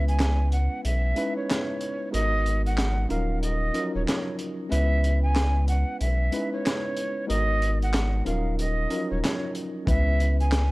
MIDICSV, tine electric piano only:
0, 0, Header, 1, 2, 480
1, 0, Start_track
1, 0, Tempo, 645161
1, 1586, Time_signature, 4, 2, 24, 8
1, 7972, End_track
2, 0, Start_track
2, 0, Title_t, "Tine electric piano"
2, 0, Program_c, 0, 4
2, 0, Control_c, 0, 64, 127
2, 0, Note_on_c, 0, 56, 73
2, 0, Note_on_c, 0, 59, 68
2, 0, Note_on_c, 0, 61, 66
2, 0, Note_on_c, 0, 64, 67
2, 0, Note_on_c, 0, 71, 80
2, 269, Note_off_c, 0, 56, 0
2, 271, Note_off_c, 0, 61, 0
2, 273, Note_off_c, 0, 59, 0
2, 275, Note_off_c, 0, 64, 0
2, 277, Note_off_c, 0, 71, 0
2, 859, Note_on_c, 0, 56, 72
2, 863, Note_on_c, 0, 61, 72
2, 868, Note_on_c, 0, 63, 70
2, 872, Note_on_c, 0, 64, 67
2, 876, Note_on_c, 0, 71, 83
2, 1311, Note_off_c, 0, 56, 0
2, 1313, Note_off_c, 0, 61, 0
2, 1316, Note_off_c, 0, 63, 0
2, 1318, Note_off_c, 0, 64, 0
2, 1320, Note_off_c, 0, 71, 0
2, 1568, Note_on_c, 0, 56, 70
2, 1572, Note_on_c, 0, 59, 67
2, 1577, Note_on_c, 0, 63, 64
2, 1580, Note_on_c, 0, 66, 69
2, 1585, Note_on_c, 0, 70, 82
2, 1597, Control_c, 0, 64, 0
2, 1722, Control_c, 0, 64, 127
2, 2188, Note_off_c, 0, 56, 0
2, 2190, Note_off_c, 0, 59, 0
2, 2192, Note_off_c, 0, 63, 0
2, 2194, Note_off_c, 0, 66, 0
2, 2196, Note_off_c, 0, 70, 0
2, 2295, Note_on_c, 0, 53, 58
2, 2299, Note_on_c, 0, 61, 71
2, 2303, Note_on_c, 0, 63, 68
2, 2307, Note_on_c, 0, 65, 69
2, 2311, Note_on_c, 0, 70, 90
2, 2316, Control_c, 0, 64, 0
2, 2343, Note_on_c, 0, 54, 77
2, 2361, Note_off_c, 0, 53, 0
2, 2438, Control_c, 0, 64, 127
2, 2711, Note_off_c, 0, 61, 0
2, 2713, Note_off_c, 0, 63, 0
2, 2715, Note_off_c, 0, 65, 0
2, 2717, Note_off_c, 0, 70, 0
2, 2733, Note_off_c, 0, 54, 0
2, 2775, Note_on_c, 0, 53, 57
2, 2779, Note_on_c, 0, 61, 68
2, 2783, Note_on_c, 0, 63, 68
2, 2788, Note_on_c, 0, 65, 69
2, 2791, Note_on_c, 0, 70, 83
2, 2824, Note_on_c, 0, 54, 83
2, 2841, Note_off_c, 0, 53, 0
2, 3231, Note_off_c, 0, 61, 0
2, 3233, Note_off_c, 0, 63, 0
2, 3236, Note_off_c, 0, 65, 0
2, 3237, Note_off_c, 0, 70, 0
2, 3254, Note_off_c, 0, 54, 0
2, 3490, Note_on_c, 0, 56, 75
2, 3494, Note_on_c, 0, 61, 70
2, 3498, Note_on_c, 0, 59, 67
2, 3501, Note_on_c, 0, 64, 69
2, 3506, Note_on_c, 0, 71, 81
2, 3516, Control_c, 0, 64, 0
2, 3636, Control_c, 0, 64, 127
2, 4109, Note_off_c, 0, 56, 0
2, 4111, Note_off_c, 0, 61, 0
2, 4113, Note_off_c, 0, 59, 0
2, 4114, Note_off_c, 0, 64, 0
2, 4117, Note_off_c, 0, 71, 0
2, 4698, Note_on_c, 0, 56, 73
2, 4702, Note_on_c, 0, 61, 70
2, 4706, Note_on_c, 0, 63, 69
2, 4711, Note_on_c, 0, 64, 65
2, 4714, Note_on_c, 0, 71, 83
2, 5151, Note_off_c, 0, 56, 0
2, 5153, Note_off_c, 0, 61, 0
2, 5155, Note_off_c, 0, 63, 0
2, 5157, Note_off_c, 0, 64, 0
2, 5159, Note_off_c, 0, 71, 0
2, 5408, Note_on_c, 0, 56, 71
2, 5412, Note_on_c, 0, 59, 66
2, 5415, Note_on_c, 0, 63, 62
2, 5420, Note_on_c, 0, 66, 68
2, 5424, Note_on_c, 0, 70, 81
2, 5435, Control_c, 0, 64, 0
2, 5578, Control_c, 0, 64, 127
2, 6027, Note_off_c, 0, 56, 0
2, 6029, Note_off_c, 0, 59, 0
2, 6031, Note_off_c, 0, 63, 0
2, 6034, Note_off_c, 0, 66, 0
2, 6035, Note_off_c, 0, 70, 0
2, 6135, Note_on_c, 0, 53, 59
2, 6139, Note_on_c, 0, 61, 69
2, 6144, Note_on_c, 0, 63, 64
2, 6148, Note_on_c, 0, 65, 71
2, 6152, Note_on_c, 0, 70, 88
2, 6157, Control_c, 0, 64, 0
2, 6183, Note_on_c, 0, 54, 77
2, 6201, Note_off_c, 0, 53, 0
2, 6267, Control_c, 0, 64, 127
2, 6551, Note_off_c, 0, 61, 0
2, 6554, Note_off_c, 0, 63, 0
2, 6555, Note_off_c, 0, 65, 0
2, 6558, Note_off_c, 0, 70, 0
2, 6573, Note_off_c, 0, 54, 0
2, 6618, Note_on_c, 0, 53, 61
2, 6622, Note_on_c, 0, 61, 68
2, 6626, Note_on_c, 0, 63, 68
2, 6630, Note_on_c, 0, 65, 68
2, 6634, Note_on_c, 0, 70, 81
2, 6666, Note_on_c, 0, 54, 77
2, 6683, Note_off_c, 0, 53, 0
2, 7073, Note_off_c, 0, 61, 0
2, 7075, Note_off_c, 0, 63, 0
2, 7077, Note_off_c, 0, 65, 0
2, 7079, Note_off_c, 0, 70, 0
2, 7095, Note_off_c, 0, 54, 0
2, 7330, Note_on_c, 0, 56, 72
2, 7335, Note_on_c, 0, 61, 67
2, 7338, Note_on_c, 0, 59, 66
2, 7343, Note_on_c, 0, 64, 67
2, 7346, Note_on_c, 0, 71, 83
2, 7357, Control_c, 0, 64, 0
2, 7480, Control_c, 0, 64, 127
2, 7949, Note_off_c, 0, 56, 0
2, 7951, Note_off_c, 0, 61, 0
2, 7952, Note_off_c, 0, 59, 0
2, 7955, Note_off_c, 0, 64, 0
2, 7957, Note_off_c, 0, 71, 0
2, 7972, End_track
0, 0, End_of_file